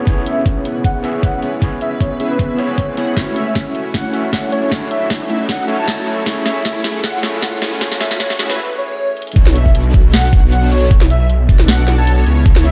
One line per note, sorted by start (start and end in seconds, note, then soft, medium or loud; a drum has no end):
0.00 3.13 C#3 medium
0.00 3.13 G#3 medium
0.00 6.22 E4 medium
0.00 3.13 B4 medium
0.00 riser medium
0.05 1.01 B3 medium
0.05 0.63 B3 medium
0.05 1.01 C#4 medium
0.05 0.63 C#4 medium
0.05 1.02 E4 medium
0.05 0.63 E4 medium
0.05 0.63 G#4 medium
0.05 1.02 G#4 medium
0.05 0.63 C#5 loud
0.05 kick medium
0.05 closed hi-hat medium
0.09 1.03 C#5 medium
0.26 0.41 E5 medium
0.26 closed hi-hat medium
0.46 kick medium
0.46 closed hi-hat medium
0.65 1.40 B3 medium
0.65 1.40 C#4 medium
0.65 1.40 E4 medium
0.65 1.40 G#4 medium
0.65 1.40 C#5 medium
0.65 closed hi-hat medium
0.84 0.99 F#5 medium
0.84 kick medium
0.84 closed hi-hat medium
1.03 1.13 B3 medium
1.03 1.13 C#4 medium
1.03 1.13 E4 medium
1.03 1.13 G#4 medium
1.03 1.14 E5 loud
1.03 closed hi-hat medium
1.23 1.38 F#5 medium
1.23 kick medium
1.23 closed hi-hat medium
1.42 1.62 B3 medium
1.42 1.62 C#4 medium
1.42 1.62 E4 medium
1.42 1.62 G#4 medium
1.42 1.62 C#5 loud
1.42 closed hi-hat medium
1.60 2.55 B3 medium
1.60 2.56 C#4 medium
1.60 2.56 E4 medium
1.60 2.57 G#4 medium
1.60 kick medium
1.60 closed hi-hat medium
1.64 2.57 C#5 loud
1.81 1.96 E5 medium
1.81 closed hi-hat medium
2.00 2.15 C#5 medium
2.00 kick medium
2.00 closed hi-hat medium
2.20 2.67 B3 medium
2.20 2.67 C#4 medium
2.20 2.67 E4 medium
2.20 2.67 G#4 medium
2.20 2.67 E5 loud
2.20 closed hi-hat medium
2.30 2.44 B4 medium
2.39 kick medium
2.39 closed hi-hat medium
2.58 2.95 B3 medium
2.58 2.95 C#4 medium
2.58 2.95 E4 medium
2.58 2.95 G#4 medium
2.58 2.88 C#5 medium
2.58 2.96 C#5 loud
2.58 closed hi-hat medium
2.78 kick loud
2.78 closed hi-hat medium
2.96 3.14 B3 medium
2.96 3.15 B3 medium
2.96 3.14 C#4 medium
2.96 3.15 C#4 medium
2.96 3.15 E4 medium
2.96 3.15 G#4 medium
2.96 3.15 C#5 medium
2.96 3.15 F#5 medium
2.96 closed hi-hat medium
3.15 6.23 F#2 medium
3.15 6.23 F#3 medium
3.15 4.10 A3 medium
3.15 3.73 A3 medium
3.15 4.11 C#4 medium
3.15 3.73 C#4 medium
3.15 4.11 E4 medium
3.15 3.73 E4 medium
3.15 3.73 F#4 medium
3.15 4.12 F#4 medium
3.15 6.23 A4 medium
3.15 3.73 C#5 loud
3.15 4.12 C#5 medium
3.15 kick loud
3.15 snare soft
3.15 closed hi-hat medium
3.36 3.51 E5 medium
3.36 closed hi-hat medium
3.55 kick medium
3.55 snare soft
3.55 closed hi-hat medium
3.75 4.50 A3 medium
3.75 4.50 C#4 medium
3.75 4.50 E4 medium
3.75 4.50 F#4 medium
3.75 4.50 C#5 medium
3.75 closed hi-hat medium
3.94 4.09 F#5 medium
3.94 kick loud
3.94 snare medium
3.94 closed hi-hat medium
4.12 4.22 A3 medium
4.12 4.22 C#4 medium
4.12 4.23 E4 medium
4.12 4.23 F#4 medium
4.12 4.23 E5 loud
4.12 closed hi-hat medium
4.33 4.48 F#5 medium
4.33 kick loud
4.33 snare medium
4.33 closed hi-hat medium
4.52 4.72 A3 medium
4.52 4.72 C#4 medium
4.52 4.72 E4 medium
4.52 4.72 F#4 medium
4.52 4.72 C#5 loud
4.52 4.59 C#5 medium
4.52 closed hi-hat medium
4.63 4.68 C#5 medium
4.70 5.65 A3 medium
4.70 5.66 C#4 medium
4.70 5.66 E4 medium
4.70 5.67 F#4 medium
4.70 5.67 C#5 loud
4.70 kick loud
4.70 snare medium
4.70 closed hi-hat medium
4.91 5.06 E5 loud
4.91 closed hi-hat medium
5.10 kick medium
5.10 snare medium
5.10 closed hi-hat medium
5.30 5.76 A3 medium
5.30 5.76 C#4 medium
5.30 5.76 E4 medium
5.30 5.76 F#4 medium
5.30 5.76 E5 loud
5.30 closed hi-hat medium
5.49 5.64 F#5 medium
5.49 kick loud
5.49 snare medium
5.49 closed hi-hat medium
5.67 6.04 A3 loud
5.67 6.05 C#4 medium
5.67 6.05 E4 medium
5.67 6.05 F#4 medium
5.67 6.05 C#5 loud
5.67 closed hi-hat medium
5.79 5.96 A3 medium
5.79 5.96 C#4 medium
5.79 5.96 E4 medium
5.79 5.96 F#4 medium
5.79 5.96 C#5 medium
5.79 5.85 A5 medium
5.88 5.94 A5 medium
5.88 kick loud
5.88 snare medium
5.88 closed hi-hat medium
5.98 6.05 A3 loud
5.98 6.05 C#4 medium
5.98 6.05 E4 medium
5.98 6.05 F#4 medium
5.98 6.05 C#5 loud
6.06 6.23 A3 medium
6.06 6.24 A3 medium
6.06 6.24 C#4 medium
6.06 6.24 E4 medium
6.06 6.24 F#4 medium
6.06 6.25 F#4 medium
6.06 6.24 C#5 medium
6.06 6.25 C#5 medium
6.06 closed hi-hat medium
6.24 8.56 A2 medium
6.24 8.56 E3 medium
6.24 7.20 A3 medium
6.24 6.82 A3 medium
6.24 7.21 C#4 medium
6.24 8.56 C#4 medium
6.24 6.82 C#4 medium
6.24 7.21 E4 medium
6.24 6.82 E4 medium
6.24 8.56 G#4 medium
6.24 6.82 G#4 medium
6.24 7.21 G#4 medium
6.24 6.82 C#5 loud
6.24 kick loud
6.24 snare medium
6.24 closed hi-hat medium
6.28 7.22 C#5 loud
6.46 6.61 E5 medium
6.46 snare medium
6.46 closed hi-hat medium
6.65 kick loud
6.65 snare medium
6.65 closed hi-hat medium
6.84 7.60 A3 medium
6.84 7.60 C#4 medium
6.84 7.60 E4 medium
6.84 7.60 G#4 medium
6.84 7.60 C#5 medium
6.84 snare medium
6.84 closed hi-hat medium
7.04 7.19 F#5 loud
7.04 kick medium
7.04 snare medium
7.04 closed hi-hat medium
7.22 7.32 A3 loud
7.22 7.32 C#4 medium
7.22 7.32 E4 medium
7.22 7.33 G#4 medium
7.22 7.33 E5 loud
7.22 snare medium
7.22 closed hi-hat medium
7.42 7.57 F#5 medium
7.42 kick loud
7.42 snare medium
7.42 closed hi-hat medium
7.62 7.82 A3 medium
7.62 7.82 C#4 medium
7.62 7.82 E4 medium
7.62 7.82 G#4 medium
7.62 7.82 C#5 loud
7.62 snare medium
7.62 closed hi-hat medium
7.79 8.58 A3 loud
7.79 8.58 C#4 medium
7.79 8.59 E4 medium
7.79 8.59 G#4 medium
7.79 8.60 C#5 loud
7.79 kick loud
7.79 snare medium
7.79 closed hi-hat medium
7.92 snare medium
8.01 8.16 E5 loud
8.01 snare medium
8.01 closed hi-hat medium
8.11 snare medium
8.20 8.35 C#5 medium
8.20 kick medium
8.20 snare loud
8.20 closed hi-hat medium
8.30 snare medium
8.39 8.59 A3 medium
8.39 8.59 C#4 medium
8.39 8.59 E4 medium
8.39 8.59 G#4 medium
8.39 8.59 E5 loud
8.39 snare loud
8.39 closed hi-hat medium
8.50 8.64 B4 medium
8.50 snare medium
8.78 9.08 C#5 medium
9.17 closed hi-hat medium
9.22 closed hi-hat medium
9.27 closed hi-hat medium
9.32 closed hi-hat medium
9.36 12.25 B1 medium
9.36 9.92 B3 medium
9.36 9.92 D4 medium
9.36 9.92 F#4 medium
9.36 9.92 A4 medium
9.36 9.92 C#5 loud
9.36 kick loud
9.36 closed hi-hat medium
9.36 crash loud
9.47 snare medium
9.55 9.70 E5 medium
9.55 closed hi-hat medium
9.66 kick medium
9.75 closed hi-hat medium
9.94 10.69 B3 medium
9.94 10.69 D4 medium
9.94 10.69 F#4 medium
9.94 10.69 A4 medium
9.94 10.69 C#5 medium
9.94 kick loud
9.94 closed hi-hat medium
10.14 10.28 F#5 medium
10.14 snare loud
10.14 closed hi-hat medium
10.33 kick loud
10.33 closed hi-hat medium
10.52 10.67 F#5 medium
10.52 closed hi-hat medium
10.72 10.91 B3 medium
10.72 10.91 D4 medium
10.72 10.91 F#4 medium
10.72 10.91 A4 medium
10.72 10.91 C#5 loud
10.72 10.78 C#5 medium
10.72 closed hi-hat medium
10.82 10.88 C#5 medium
10.91 kick loud
10.91 closed hi-hat medium
11.01 snare medium
11.10 11.25 E5 medium
11.10 closed hi-hat medium
11.30 closed hi-hat medium
11.49 11.96 B3 medium
11.49 11.96 D4 medium
11.49 11.96 F#4 medium
11.49 11.96 A4 medium
11.49 11.96 D5 loud
11.49 kick loud
11.49 closed hi-hat medium
11.59 snare medium
11.68 11.83 F#5 medium
11.68 snare loud
11.68 closed hi-hat medium
11.88 snare medium
11.88 closed hi-hat medium
11.98 12.15 B3 medium
11.98 12.15 D4 medium
11.98 12.15 F#4 medium
11.98 12.15 A4 medium
11.98 12.15 C#5 medium
11.98 12.04 A5 medium
12.07 12.14 A5 medium
12.07 closed hi-hat medium
12.17 12.24 B3 loud
12.17 12.24 D4 medium
12.17 12.24 F#4 medium
12.17 12.24 A4 medium
12.17 12.24 C#5 loud
12.26 12.71 C#2 medium
12.26 12.44 B3 medium
12.26 12.44 C#4 medium
12.26 12.44 E4 medium
12.26 12.44 G#4 medium
12.26 12.44 C#5 medium
12.26 closed hi-hat medium
12.46 12.71 B3 medium
12.46 12.71 C#4 medium
12.46 12.71 E4 medium
12.46 12.71 G#4 medium
12.46 12.71 C#5 loud
12.46 kick loud
12.46 closed hi-hat medium
12.56 snare medium
12.65 12.71 E5 loud
12.65 closed hi-hat medium